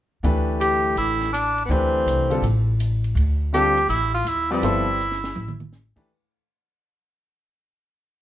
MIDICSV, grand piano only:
0, 0, Header, 1, 2, 480
1, 0, Start_track
1, 0, Tempo, 365854
1, 312, Time_signature, 4, 2, 24, 8
1, 10782, End_track
2, 0, Start_track
2, 0, Title_t, "Grand piano"
2, 0, Program_c, 0, 0
2, 309, Note_on_c, 0, 52, 55
2, 315, Note_on_c, 0, 57, 54
2, 318, Note_on_c, 0, 62, 53
2, 329, Note_on_c, 0, 67, 52
2, 329, Note_on_c, 0, 71, 67
2, 1648, Note_off_c, 0, 52, 0
2, 1651, Note_off_c, 0, 57, 0
2, 1652, Note_off_c, 0, 62, 0
2, 1658, Note_off_c, 0, 67, 0
2, 1658, Note_off_c, 0, 71, 0
2, 2224, Note_on_c, 0, 52, 54
2, 2232, Note_on_c, 0, 57, 47
2, 2233, Note_on_c, 0, 62, 50
2, 2237, Note_on_c, 0, 67, 50
2, 2250, Note_on_c, 0, 71, 61
2, 2957, Note_off_c, 0, 52, 0
2, 2961, Note_off_c, 0, 57, 0
2, 2962, Note_off_c, 0, 62, 0
2, 2964, Note_off_c, 0, 67, 0
2, 2970, Note_off_c, 0, 71, 0
2, 3017, Note_on_c, 0, 50, 53
2, 3018, Note_on_c, 0, 55, 51
2, 3023, Note_on_c, 0, 60, 50
2, 3032, Note_on_c, 0, 65, 52
2, 3039, Note_on_c, 0, 69, 60
2, 3171, Note_off_c, 0, 50, 0
2, 3171, Note_off_c, 0, 55, 0
2, 3173, Note_off_c, 0, 60, 0
2, 3178, Note_off_c, 0, 65, 0
2, 3181, Note_off_c, 0, 69, 0
2, 4628, Note_on_c, 0, 50, 57
2, 4635, Note_on_c, 0, 55, 54
2, 4641, Note_on_c, 0, 60, 53
2, 4647, Note_on_c, 0, 65, 55
2, 4647, Note_on_c, 0, 69, 63
2, 4912, Note_off_c, 0, 50, 0
2, 4915, Note_off_c, 0, 55, 0
2, 4918, Note_off_c, 0, 60, 0
2, 4921, Note_off_c, 0, 69, 0
2, 4922, Note_off_c, 0, 65, 0
2, 5912, Note_on_c, 0, 55, 61
2, 5914, Note_on_c, 0, 60, 59
2, 5925, Note_on_c, 0, 53, 57
2, 5925, Note_on_c, 0, 71, 64
2, 5925, Note_on_c, 0, 74, 74
2, 6054, Note_off_c, 0, 53, 0
2, 6074, Note_on_c, 0, 53, 52
2, 6080, Note_on_c, 0, 59, 49
2, 6082, Note_on_c, 0, 64, 49
2, 6087, Note_on_c, 0, 69, 51
2, 6094, Note_on_c, 0, 72, 58
2, 6356, Note_off_c, 0, 53, 0
2, 6358, Note_off_c, 0, 59, 0
2, 6360, Note_off_c, 0, 64, 0
2, 6362, Note_off_c, 0, 69, 0
2, 6366, Note_off_c, 0, 72, 0
2, 6524, Note_off_c, 0, 55, 0
2, 6525, Note_off_c, 0, 60, 0
2, 6530, Note_off_c, 0, 71, 0
2, 6530, Note_off_c, 0, 74, 0
2, 7817, Note_on_c, 0, 52, 66
2, 7824, Note_on_c, 0, 57, 62
2, 7828, Note_on_c, 0, 62, 59
2, 7832, Note_on_c, 0, 67, 61
2, 7840, Note_on_c, 0, 71, 72
2, 7972, Note_off_c, 0, 52, 0
2, 7976, Note_off_c, 0, 57, 0
2, 7978, Note_off_c, 0, 62, 0
2, 7980, Note_off_c, 0, 67, 0
2, 7984, Note_off_c, 0, 71, 0
2, 10782, End_track
0, 0, End_of_file